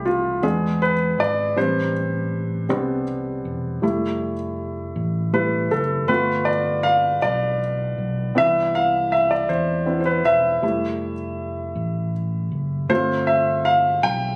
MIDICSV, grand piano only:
0, 0, Header, 1, 2, 480
1, 0, Start_track
1, 0, Tempo, 755668
1, 993, Time_signature, 6, 3, 24, 8
1, 9121, End_track
2, 0, Start_track
2, 0, Title_t, "Grand piano"
2, 0, Program_c, 0, 0
2, 0, Control_c, 0, 64, 127
2, 0, Note_on_c, 0, 57, 45
2, 0, Note_on_c, 0, 62, 50
2, 0, Note_on_c, 0, 64, 49
2, 0, Note_on_c, 0, 67, 63
2, 35, Note_on_c, 0, 65, 69
2, 246, Note_off_c, 0, 64, 0
2, 247, Note_off_c, 0, 57, 0
2, 250, Note_off_c, 0, 62, 0
2, 267, Note_on_c, 0, 56, 47
2, 271, Note_on_c, 0, 59, 40
2, 275, Note_on_c, 0, 62, 49
2, 275, Note_on_c, 0, 68, 75
2, 282, Note_off_c, 0, 65, 0
2, 283, Note_off_c, 0, 67, 0
2, 283, Control_c, 0, 64, 0
2, 409, Control_c, 0, 64, 127
2, 520, Note_on_c, 0, 71, 77
2, 522, Note_off_c, 0, 68, 0
2, 589, Note_off_c, 0, 56, 0
2, 591, Note_off_c, 0, 59, 0
2, 593, Note_off_c, 0, 62, 0
2, 762, Note_on_c, 0, 74, 87
2, 764, Note_off_c, 0, 71, 0
2, 993, Note_on_c, 0, 55, 51
2, 995, Note_on_c, 0, 71, 45
2, 997, Note_on_c, 0, 60, 44
2, 997, Note_on_c, 0, 62, 55
2, 1001, Control_c, 0, 64, 0
2, 1001, Note_on_c, 0, 72, 79
2, 1005, Note_off_c, 0, 74, 0
2, 1125, Control_c, 0, 64, 127
2, 1220, Note_off_c, 0, 72, 0
2, 1687, Note_off_c, 0, 55, 0
2, 1688, Note_off_c, 0, 71, 0
2, 1689, Note_off_c, 0, 60, 0
2, 1689, Note_off_c, 0, 62, 0
2, 1709, Note_on_c, 0, 55, 46
2, 1709, Note_on_c, 0, 59, 40
2, 1712, Note_on_c, 0, 62, 52
2, 1714, Note_on_c, 0, 60, 39
2, 1926, Note_off_c, 0, 55, 0
2, 1926, Note_off_c, 0, 59, 0
2, 1928, Note_off_c, 0, 62, 0
2, 1929, Note_off_c, 0, 60, 0
2, 2427, Note_on_c, 0, 55, 52
2, 2432, Note_on_c, 0, 57, 47
2, 2435, Note_on_c, 0, 64, 58
2, 2440, Control_c, 0, 64, 0
2, 2563, Control_c, 0, 64, 127
2, 2748, Note_off_c, 0, 55, 0
2, 2751, Note_off_c, 0, 57, 0
2, 2752, Note_off_c, 0, 64, 0
2, 3388, Note_on_c, 0, 55, 43
2, 3389, Note_on_c, 0, 57, 41
2, 3390, Note_on_c, 0, 71, 69
2, 3394, Note_on_c, 0, 64, 46
2, 3606, Note_off_c, 0, 55, 0
2, 3606, Note_off_c, 0, 57, 0
2, 3608, Note_off_c, 0, 64, 0
2, 3629, Note_on_c, 0, 69, 68
2, 3638, Note_off_c, 0, 71, 0
2, 3683, Note_off_c, 0, 69, 0
2, 3862, Note_on_c, 0, 71, 85
2, 3866, Note_on_c, 0, 57, 50
2, 3869, Note_on_c, 0, 59, 45
2, 3875, Note_on_c, 0, 65, 61
2, 3878, Control_c, 0, 64, 0
2, 3998, Control_c, 0, 64, 127
2, 4098, Note_on_c, 0, 74, 81
2, 4114, Note_off_c, 0, 71, 0
2, 4340, Note_on_c, 0, 77, 92
2, 4352, Note_off_c, 0, 74, 0
2, 4563, Note_off_c, 0, 57, 0
2, 4565, Note_off_c, 0, 59, 0
2, 4568, Note_off_c, 0, 65, 0
2, 4588, Note_on_c, 0, 74, 83
2, 4593, Note_off_c, 0, 77, 0
2, 4813, Note_off_c, 0, 74, 0
2, 5305, Note_on_c, 0, 59, 52
2, 5308, Note_on_c, 0, 62, 48
2, 5312, Note_on_c, 0, 52, 58
2, 5320, Control_c, 0, 64, 0
2, 5322, Note_on_c, 0, 76, 92
2, 5440, Control_c, 0, 64, 127
2, 5559, Note_on_c, 0, 77, 88
2, 5564, Note_off_c, 0, 76, 0
2, 5793, Note_on_c, 0, 76, 81
2, 5802, Note_off_c, 0, 77, 0
2, 5912, Note_on_c, 0, 74, 78
2, 5916, Note_off_c, 0, 76, 0
2, 6003, Note_off_c, 0, 59, 0
2, 6005, Note_off_c, 0, 62, 0
2, 6007, Note_off_c, 0, 52, 0
2, 6029, Note_on_c, 0, 72, 76
2, 6035, Note_off_c, 0, 74, 0
2, 6264, Note_on_c, 0, 62, 38
2, 6265, Note_on_c, 0, 59, 43
2, 6267, Note_on_c, 0, 64, 54
2, 6345, Note_off_c, 0, 72, 0
2, 6355, Note_on_c, 0, 72, 55
2, 6387, Note_on_c, 0, 71, 76
2, 6388, Note_off_c, 0, 72, 0
2, 6484, Note_off_c, 0, 59, 0
2, 6484, Note_off_c, 0, 62, 0
2, 6485, Note_off_c, 0, 64, 0
2, 6501, Note_off_c, 0, 71, 0
2, 6513, Note_on_c, 0, 76, 88
2, 6748, Note_on_c, 0, 55, 51
2, 6754, Note_on_c, 0, 57, 52
2, 6756, Note_on_c, 0, 64, 60
2, 6761, Control_c, 0, 64, 0
2, 6875, Control_c, 0, 64, 127
2, 7070, Note_off_c, 0, 55, 0
2, 7073, Note_off_c, 0, 57, 0
2, 7074, Note_off_c, 0, 64, 0
2, 7689, Note_off_c, 0, 76, 0
2, 8190, Note_on_c, 0, 57, 56
2, 8192, Note_on_c, 0, 60, 46
2, 8192, Note_on_c, 0, 72, 83
2, 8197, Note_on_c, 0, 65, 61
2, 8204, Control_c, 0, 64, 0
2, 8319, Control_c, 0, 64, 127
2, 8417, Note_off_c, 0, 72, 0
2, 8429, Note_on_c, 0, 76, 80
2, 8671, Note_on_c, 0, 77, 89
2, 8680, Note_off_c, 0, 76, 0
2, 8897, Note_off_c, 0, 77, 0
2, 8914, Note_on_c, 0, 79, 96
2, 9121, Note_off_c, 0, 57, 0
2, 9121, Note_off_c, 0, 60, 0
2, 9121, Note_off_c, 0, 65, 0
2, 9121, Note_off_c, 0, 79, 0
2, 9121, End_track
0, 0, End_of_file